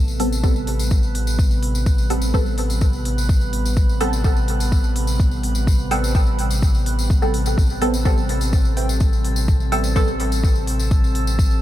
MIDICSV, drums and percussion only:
0, 0, Header, 1, 2, 480
1, 0, Start_track
1, 0, Key_signature, 0, "minor"
1, 0, Tempo, 476190
1, 1879, Time_signature, 4, 2, 24, 8
1, 11711, End_track
2, 0, Start_track
2, 0, Title_t, "Drums"
2, 80, Note_on_c, 9, 54, 41
2, 181, Note_off_c, 9, 54, 0
2, 199, Note_on_c, 9, 46, 82
2, 299, Note_off_c, 9, 46, 0
2, 327, Note_on_c, 9, 54, 75
2, 428, Note_off_c, 9, 54, 0
2, 438, Note_on_c, 9, 54, 64
2, 439, Note_on_c, 9, 36, 117
2, 539, Note_off_c, 9, 54, 0
2, 540, Note_off_c, 9, 36, 0
2, 565, Note_on_c, 9, 54, 34
2, 665, Note_off_c, 9, 54, 0
2, 678, Note_on_c, 9, 46, 65
2, 779, Note_off_c, 9, 46, 0
2, 800, Note_on_c, 9, 46, 33
2, 801, Note_on_c, 9, 54, 71
2, 900, Note_off_c, 9, 46, 0
2, 902, Note_off_c, 9, 54, 0
2, 917, Note_on_c, 9, 54, 63
2, 919, Note_on_c, 9, 36, 113
2, 1018, Note_off_c, 9, 54, 0
2, 1020, Note_off_c, 9, 36, 0
2, 1038, Note_on_c, 9, 54, 35
2, 1138, Note_off_c, 9, 54, 0
2, 1159, Note_on_c, 9, 46, 75
2, 1259, Note_off_c, 9, 46, 0
2, 1281, Note_on_c, 9, 54, 69
2, 1382, Note_off_c, 9, 54, 0
2, 1399, Note_on_c, 9, 36, 119
2, 1404, Note_on_c, 9, 54, 67
2, 1499, Note_off_c, 9, 36, 0
2, 1505, Note_off_c, 9, 54, 0
2, 1521, Note_on_c, 9, 54, 41
2, 1622, Note_off_c, 9, 54, 0
2, 1639, Note_on_c, 9, 46, 69
2, 1739, Note_off_c, 9, 46, 0
2, 1763, Note_on_c, 9, 54, 76
2, 1864, Note_off_c, 9, 54, 0
2, 1877, Note_on_c, 9, 54, 69
2, 1879, Note_on_c, 9, 36, 120
2, 1977, Note_off_c, 9, 54, 0
2, 1979, Note_off_c, 9, 36, 0
2, 1998, Note_on_c, 9, 54, 44
2, 2098, Note_off_c, 9, 54, 0
2, 2118, Note_on_c, 9, 46, 83
2, 2219, Note_off_c, 9, 46, 0
2, 2233, Note_on_c, 9, 54, 81
2, 2334, Note_off_c, 9, 54, 0
2, 2358, Note_on_c, 9, 36, 116
2, 2364, Note_on_c, 9, 54, 64
2, 2459, Note_off_c, 9, 36, 0
2, 2465, Note_off_c, 9, 54, 0
2, 2481, Note_on_c, 9, 54, 41
2, 2582, Note_off_c, 9, 54, 0
2, 2598, Note_on_c, 9, 46, 68
2, 2699, Note_off_c, 9, 46, 0
2, 2720, Note_on_c, 9, 46, 33
2, 2721, Note_on_c, 9, 54, 81
2, 2820, Note_off_c, 9, 46, 0
2, 2821, Note_off_c, 9, 54, 0
2, 2833, Note_on_c, 9, 54, 69
2, 2838, Note_on_c, 9, 36, 117
2, 2934, Note_off_c, 9, 54, 0
2, 2939, Note_off_c, 9, 36, 0
2, 2955, Note_on_c, 9, 54, 37
2, 3056, Note_off_c, 9, 54, 0
2, 3078, Note_on_c, 9, 46, 81
2, 3179, Note_off_c, 9, 46, 0
2, 3206, Note_on_c, 9, 54, 72
2, 3307, Note_off_c, 9, 54, 0
2, 3318, Note_on_c, 9, 36, 127
2, 3318, Note_on_c, 9, 54, 59
2, 3419, Note_off_c, 9, 36, 0
2, 3419, Note_off_c, 9, 54, 0
2, 3439, Note_on_c, 9, 54, 41
2, 3539, Note_off_c, 9, 54, 0
2, 3558, Note_on_c, 9, 46, 70
2, 3658, Note_off_c, 9, 46, 0
2, 3684, Note_on_c, 9, 54, 80
2, 3785, Note_off_c, 9, 54, 0
2, 3796, Note_on_c, 9, 54, 68
2, 3798, Note_on_c, 9, 36, 125
2, 3897, Note_off_c, 9, 54, 0
2, 3899, Note_off_c, 9, 36, 0
2, 3924, Note_on_c, 9, 54, 43
2, 4025, Note_off_c, 9, 54, 0
2, 4038, Note_on_c, 9, 46, 82
2, 4139, Note_off_c, 9, 46, 0
2, 4162, Note_on_c, 9, 54, 80
2, 4263, Note_off_c, 9, 54, 0
2, 4277, Note_on_c, 9, 54, 68
2, 4278, Note_on_c, 9, 36, 118
2, 4377, Note_off_c, 9, 54, 0
2, 4379, Note_off_c, 9, 36, 0
2, 4399, Note_on_c, 9, 54, 40
2, 4500, Note_off_c, 9, 54, 0
2, 4517, Note_on_c, 9, 46, 75
2, 4617, Note_off_c, 9, 46, 0
2, 4639, Note_on_c, 9, 46, 34
2, 4640, Note_on_c, 9, 54, 76
2, 4740, Note_off_c, 9, 46, 0
2, 4741, Note_off_c, 9, 54, 0
2, 4758, Note_on_c, 9, 36, 118
2, 4760, Note_on_c, 9, 54, 70
2, 4859, Note_off_c, 9, 36, 0
2, 4861, Note_off_c, 9, 54, 0
2, 4878, Note_on_c, 9, 54, 42
2, 4979, Note_off_c, 9, 54, 0
2, 4997, Note_on_c, 9, 46, 82
2, 5098, Note_off_c, 9, 46, 0
2, 5113, Note_on_c, 9, 54, 80
2, 5214, Note_off_c, 9, 54, 0
2, 5238, Note_on_c, 9, 36, 123
2, 5243, Note_on_c, 9, 54, 63
2, 5339, Note_off_c, 9, 36, 0
2, 5344, Note_off_c, 9, 54, 0
2, 5356, Note_on_c, 9, 54, 39
2, 5457, Note_off_c, 9, 54, 0
2, 5477, Note_on_c, 9, 46, 73
2, 5578, Note_off_c, 9, 46, 0
2, 5593, Note_on_c, 9, 54, 83
2, 5694, Note_off_c, 9, 54, 0
2, 5718, Note_on_c, 9, 36, 122
2, 5723, Note_on_c, 9, 54, 76
2, 5819, Note_off_c, 9, 36, 0
2, 5824, Note_off_c, 9, 54, 0
2, 5845, Note_on_c, 9, 54, 38
2, 5946, Note_off_c, 9, 54, 0
2, 5958, Note_on_c, 9, 46, 85
2, 6058, Note_off_c, 9, 46, 0
2, 6087, Note_on_c, 9, 54, 79
2, 6188, Note_off_c, 9, 54, 0
2, 6197, Note_on_c, 9, 54, 64
2, 6198, Note_on_c, 9, 36, 121
2, 6298, Note_off_c, 9, 54, 0
2, 6299, Note_off_c, 9, 36, 0
2, 6316, Note_on_c, 9, 54, 35
2, 6417, Note_off_c, 9, 54, 0
2, 6437, Note_on_c, 9, 46, 72
2, 6538, Note_off_c, 9, 46, 0
2, 6557, Note_on_c, 9, 54, 78
2, 6559, Note_on_c, 9, 46, 34
2, 6658, Note_off_c, 9, 54, 0
2, 6660, Note_off_c, 9, 46, 0
2, 6678, Note_on_c, 9, 36, 115
2, 6681, Note_on_c, 9, 54, 73
2, 6779, Note_off_c, 9, 36, 0
2, 6782, Note_off_c, 9, 54, 0
2, 6799, Note_on_c, 9, 54, 44
2, 6900, Note_off_c, 9, 54, 0
2, 6917, Note_on_c, 9, 46, 85
2, 7018, Note_off_c, 9, 46, 0
2, 7042, Note_on_c, 9, 54, 80
2, 7143, Note_off_c, 9, 54, 0
2, 7158, Note_on_c, 9, 36, 126
2, 7161, Note_on_c, 9, 54, 61
2, 7259, Note_off_c, 9, 36, 0
2, 7262, Note_off_c, 9, 54, 0
2, 7280, Note_on_c, 9, 54, 40
2, 7381, Note_off_c, 9, 54, 0
2, 7398, Note_on_c, 9, 46, 73
2, 7499, Note_off_c, 9, 46, 0
2, 7517, Note_on_c, 9, 54, 83
2, 7618, Note_off_c, 9, 54, 0
2, 7638, Note_on_c, 9, 36, 120
2, 7646, Note_on_c, 9, 54, 65
2, 7739, Note_off_c, 9, 36, 0
2, 7746, Note_off_c, 9, 54, 0
2, 7762, Note_on_c, 9, 54, 37
2, 7863, Note_off_c, 9, 54, 0
2, 7878, Note_on_c, 9, 46, 80
2, 7979, Note_off_c, 9, 46, 0
2, 8000, Note_on_c, 9, 54, 87
2, 8101, Note_off_c, 9, 54, 0
2, 8117, Note_on_c, 9, 54, 70
2, 8118, Note_on_c, 9, 36, 119
2, 8218, Note_off_c, 9, 54, 0
2, 8219, Note_off_c, 9, 36, 0
2, 8242, Note_on_c, 9, 54, 36
2, 8343, Note_off_c, 9, 54, 0
2, 8358, Note_on_c, 9, 46, 69
2, 8459, Note_off_c, 9, 46, 0
2, 8476, Note_on_c, 9, 54, 72
2, 8480, Note_on_c, 9, 46, 33
2, 8577, Note_off_c, 9, 54, 0
2, 8581, Note_off_c, 9, 46, 0
2, 8596, Note_on_c, 9, 54, 69
2, 8598, Note_on_c, 9, 36, 117
2, 8697, Note_off_c, 9, 54, 0
2, 8699, Note_off_c, 9, 36, 0
2, 8721, Note_on_c, 9, 54, 38
2, 8822, Note_off_c, 9, 54, 0
2, 8839, Note_on_c, 9, 46, 78
2, 8940, Note_off_c, 9, 46, 0
2, 8963, Note_on_c, 9, 54, 83
2, 9064, Note_off_c, 9, 54, 0
2, 9075, Note_on_c, 9, 54, 68
2, 9078, Note_on_c, 9, 36, 122
2, 9175, Note_off_c, 9, 54, 0
2, 9179, Note_off_c, 9, 36, 0
2, 9203, Note_on_c, 9, 54, 41
2, 9304, Note_off_c, 9, 54, 0
2, 9319, Note_on_c, 9, 46, 67
2, 9420, Note_off_c, 9, 46, 0
2, 9435, Note_on_c, 9, 54, 85
2, 9536, Note_off_c, 9, 54, 0
2, 9557, Note_on_c, 9, 54, 64
2, 9559, Note_on_c, 9, 36, 115
2, 9658, Note_off_c, 9, 54, 0
2, 9659, Note_off_c, 9, 36, 0
2, 9680, Note_on_c, 9, 54, 39
2, 9780, Note_off_c, 9, 54, 0
2, 9798, Note_on_c, 9, 46, 76
2, 9899, Note_off_c, 9, 46, 0
2, 9916, Note_on_c, 9, 54, 80
2, 10016, Note_off_c, 9, 54, 0
2, 10038, Note_on_c, 9, 54, 64
2, 10039, Note_on_c, 9, 36, 114
2, 10139, Note_off_c, 9, 54, 0
2, 10140, Note_off_c, 9, 36, 0
2, 10159, Note_on_c, 9, 54, 36
2, 10260, Note_off_c, 9, 54, 0
2, 10279, Note_on_c, 9, 46, 68
2, 10380, Note_off_c, 9, 46, 0
2, 10401, Note_on_c, 9, 46, 32
2, 10402, Note_on_c, 9, 54, 70
2, 10501, Note_off_c, 9, 46, 0
2, 10503, Note_off_c, 9, 54, 0
2, 10519, Note_on_c, 9, 36, 112
2, 10527, Note_on_c, 9, 54, 64
2, 10620, Note_off_c, 9, 36, 0
2, 10628, Note_off_c, 9, 54, 0
2, 10640, Note_on_c, 9, 54, 40
2, 10740, Note_off_c, 9, 54, 0
2, 10759, Note_on_c, 9, 46, 78
2, 10860, Note_off_c, 9, 46, 0
2, 10881, Note_on_c, 9, 54, 73
2, 10982, Note_off_c, 9, 54, 0
2, 10997, Note_on_c, 9, 54, 57
2, 10999, Note_on_c, 9, 36, 117
2, 11098, Note_off_c, 9, 54, 0
2, 11100, Note_off_c, 9, 36, 0
2, 11129, Note_on_c, 9, 54, 37
2, 11230, Note_off_c, 9, 54, 0
2, 11239, Note_on_c, 9, 46, 68
2, 11340, Note_off_c, 9, 46, 0
2, 11363, Note_on_c, 9, 54, 79
2, 11464, Note_off_c, 9, 54, 0
2, 11479, Note_on_c, 9, 36, 114
2, 11482, Note_on_c, 9, 54, 69
2, 11580, Note_off_c, 9, 36, 0
2, 11583, Note_off_c, 9, 54, 0
2, 11602, Note_on_c, 9, 54, 38
2, 11703, Note_off_c, 9, 54, 0
2, 11711, End_track
0, 0, End_of_file